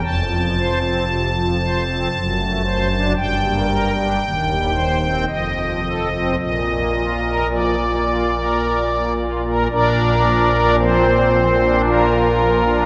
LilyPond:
<<
  \new Staff \with { instrumentName = "Pipe organ" } { \time 3/4 \key bes \major \tempo 4 = 56 a''2. | g''2 ees''4 | ees''4 d''4. r8 | <d' bes' d''>4 <c' c''>4 <bes f' bes'>4 | }
  \new Staff \with { instrumentName = "Pipe organ" } { \time 3/4 \key bes \major << { f,16 f16 c''16 c'16 c16 f16 c''16 c'16 fis,16 a16 c''16 d'16 | g,16 bes16 bes'16 d'16 ees,16 g16 c''16 c'16 f,16 f16 a'16 c'16 | bes,16 bes16 f'16 bes'16 f16 bes16 f'16 bes'8 bes16 f'16 bes'16 | bes,16 bes16 f16 d'16 f16 bes16 f16 d'8 bes16 f16 d'16 | } \\ { f,,2 fis,,4 | g,,4 ees,,4 f,,4 | bes,,2. | bes,,2. | } >> }
>>